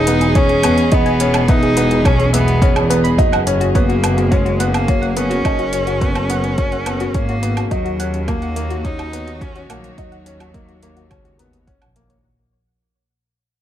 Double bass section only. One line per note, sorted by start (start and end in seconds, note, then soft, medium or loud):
0.00 0.59 E1 loud
0.64 0.86 E2 medium
0.92 3.13 E1 loud
2.05 2.27 B1 loud
2.76 3.13 E2 loud
3.19 5.40 F#1 loud
5.45 7.10 F#1 loud
7.15 7.66 G#1 loud
7.71 9.64 D#2 loud
9.70 9.91 A#1 medium
9.98 12.19 D#2 loud
11.11 11.33 C#2 medium
11.82 12.19 A#1 loud